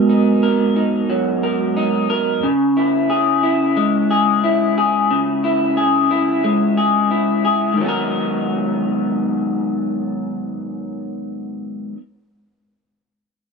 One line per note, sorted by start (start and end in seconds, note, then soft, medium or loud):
0.00 2.43 G#2 medium
0.00 1.08 F#3 medium
0.00 2.38 G#3 medium
0.00 2.39 B3 medium
0.00 2.40 F#4 medium
0.00 0.42 A#4 medium
0.00 2.40 A#4 medium
0.09 0.75 D#4 medium
0.43 1.42 A#4 medium
0.76 1.75 D#4 medium
1.10 2.50 F#3 medium
1.43 2.09 A#4 medium
1.77 2.50 D#4 medium
2.10 2.50 A#4 medium
2.43 5.09 C#3 medium
2.77 3.42 E4 soft
3.10 4.10 G#4 medium
3.43 4.42 E4 medium
3.77 6.44 G#3 medium
4.11 4.77 G#4 medium
4.44 5.43 E4 medium
4.78 5.77 G#4 medium
5.11 7.77 C#3 medium
5.44 6.10 E4 soft
5.77 6.77 G#4 medium
6.11 7.10 E4 medium
6.44 7.80 G#3 medium
6.77 7.44 G#4 medium
7.11 7.85 E4 soft
7.45 7.88 G#4 medium
7.74 11.93 G#2 medium
7.74 11.95 D#3 medium
7.80 11.97 F#3 medium
7.80 11.98 B3 medium
7.86 12.00 D#4 medium
7.86 12.01 A#4 medium